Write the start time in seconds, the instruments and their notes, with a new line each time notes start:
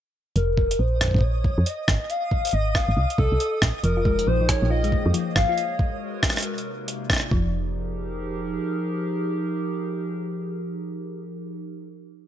0.36 fm bass F1, soft synth lead A#4, synth texture D#5, closed hi-hat
0.57 kick
0.71 closed hi-hat
0.79 fm bass A#1, soft synth lead C5
1.01 kick, cross-stick, closed hi-hat
1.04 kick
1.08 kick
1.11 fm bass A#1, kick
1.14 kick
1.17 kick
1.19 kick
1.21 soft synth lead C#5, kick
1.44 kick
1.58 fm bass F2
1.66 soft synth lead D#5, closed hi-hat
1.88 fm bass G#1, kick, cross-stick
2.10 soft synth lead F5, closed hi-hat
2.31 kick
2.45 closed hi-hat
2.47 closed hi-hat
2.49 closed hi-hat
2.51 fm bass G#1, soft synth lead D#5, closed hi-hat
2.75 soft synth lead F5, kick, cross-stick
2.88 fm bass G#1
2.97 fm bass C2
3.10 closed hi-hat
3.18 fm bass C2, soft synth lead A4, kick
3.32 fm bass C2
3.40 closed hi-hat
3.62 fm bass A#1, kick, cross-stick
3.84 fm bass F1, synth arpeggio sound F3, soft synth lead A#4, closed hi-hat
3.93 synth arpeggio sound F4, ambient pad G#4
4.05 synth arpeggio sound G#3, kick
4.19 closed hi-hat
4.27 fm bass A#1, synth arpeggio sound F3, soft synth lead C5
4.41 synth arpeggio sound F3
4.49 soft synth lead C#5, kick, cross-stick, closed hi-hat
4.62 fm bass A#1, synth arpeggio sound F3
4.71 synth arpeggio sound F4, soft synth lead D#5, ambient pad D#5
4.84 synth arpeggio sound G#3, closed hi-hat
4.92 kick
4.99 ambient pad C#5
5.06 fm bass F2, synth arpeggio sound F3
5.14 synth arpeggio sound F3, closed hi-hat
5.36 fm bass G#1, synth arpeggio sound F3, soft synth lead F5, kick, cross-stick
5.49 synth arpeggio sound F4
5.58 closed hi-hat
5.79 kick
6.23 kick, cross-stick, closed hi-hat
6.26 closed hi-hat
6.29 cross-stick, closed hi-hat
6.33 closed hi-hat
6.36 cross-stick, closed hi-hat
6.38 closed hi-hat
6.40 closed hi-hat
6.42 closed hi-hat
6.58 closed hi-hat
6.88 closed hi-hat
7.10 kick, cross-stick
7.13 cross-stick
7.16 cross-stick
7.20 cross-stick
7.31 fm bass F1, synth arpeggio sound F3, ambient pad F3, kick
7.39 ambient pad D#4
7.46 ambient pad G4
7.51 ambient pad G#4
7.58 ambient pad A#4